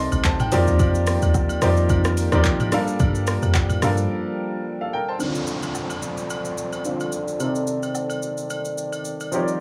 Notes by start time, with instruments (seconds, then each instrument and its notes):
Already playing: french horn section C3 G3 C4 D#4, grand piano C3 C4 D#4 A4 D5 C6
0.00 grand piano D#5
0.12 log drum bass A1, high agogo, shaker
0.24 log drum bass A1, grand piano C5 A5, kick, clap, shaker
0.40 grand piano G5, mid tom, high agogo, shaker
0.52 log drum bass F2, french horn section D#3 A#3 G4 D5, grand piano F3 C4 D#4 G4 A#4 D5, open hi-hat, shaker
0.67 log drum bass D#2, shaker
0.79 log drum bass F2, kick, high agogo, shaker
0.95 shaker
1.07 cross-stick, open hi-hat, shaker
1.22 log drum bass D#2, high agogo, shaker
1.34 kick, low woodblock, shaker
1.49 high agogo, shaker
1.62 log drum bass F2, grand piano F3 C4 D#4 G4 A#4 D5, cross-stick, open hi-hat, shaker
1.77 shaker
1.89 log drum bass F2, kick, high agogo, shaker
2.04 cross-stick, shaker
2.17 open hi-hat, shaker
2.32 log drum bass D#2, grand piano F3 C4 D#4 G4 A#4 D5, cross-stick, high agogo, shaker
2.44 kick, clap, shaker
2.60 mid tom, high agogo, shaker
2.72 french horn section F3 G3, grand piano G3 D4 A4 A#4 F5, cross-stick, open hi-hat, shaker
2.87 shaker
3.00 log drum bass G2, kick, high agogo, shaker
3.15 shaker
3.27 cross-stick, open hi-hat, shaker
3.42 log drum bass F2, high agogo, shaker
3.54 kick, clap, low woodblock, shaker
3.69 mid tom, high agogo, shaker
3.82 log drum bass G2, grand piano G3 D4 A4 A#4 F5, cross-stick, open hi-hat, shaker
3.97 shaker
4.81 grand piano A4 F5
4.93 grand piano A#4 G5
5.09 grand piano C5 A5
5.19 grand piano D3 C4 D#4 A4 D5, french horn section F3 C4 A4 D5, downlifter, high agogo, shaker
5.27 grand piano F4
5.35 shaker
5.47 shaker
5.63 high agogo, shaker
5.75 low woodblock, shaker
5.90 high agogo, shaker
6.02 shaker
6.17 shaker
6.30 high agogo, shaker
6.45 shaker
6.58 shaker
6.73 high agogo, shaker
6.85 grand piano D3 C4 F4 A4 D5, shaker
7.00 high agogo, shaker
7.12 shaker
7.28 shaker
7.39 grand piano C3 C4 D#4 A4 D5, french horn section D#3, high agogo, shaker
7.55 shaker
7.67 shaker
7.83 high agogo, shaker
7.95 low woodblock, shaker
8.10 high agogo, shaker
8.23 shaker
8.37 shaker
8.50 high agogo, shaker
8.65 shaker
8.78 shaker
8.93 high agogo, shaker
9.05 shaker
9.20 high agogo, shaker
9.31 grand piano F3 C4 D#4 G4 A#4 C#5, french horn section G3 F4 A#4, shaker
9.42 grand piano D5
9.48 shaker